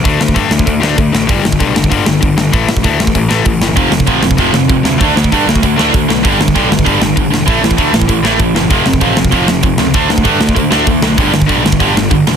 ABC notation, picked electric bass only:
X:1
M:4/4
L:1/8
Q:1/4=194
K:D
V:1 name="Picked electric bass" clef=bass
D,, D,, G,, D,, D,, D,, D,, A,,, | G,,, G,,, B,,, G,,, G,,, G,,, G,,, G,,, | A,,, A,,, D,, A,,, A,,, A,,, A,,, G,,, | =F,,, F,,, A,,, F,,, F,,, F,,, F,,, D,, |
D,, D,, G,, D,, D,, D,, D,, B,,, | G,,, G,,, B,,, G,,, G,,, G,,, G,,, E,,, | A,,, A,,, D,, A,,, A,,, A,,, A,,, F,,, | =F,,, F,,, A,,, F,,, F,,, F,,, F,,, C,, |
D,, D,, G,, D,, D,, D,, D,, B,,, | G,,, G,,, B,,, G,,, G,,, G,,, G,,, E,,, |]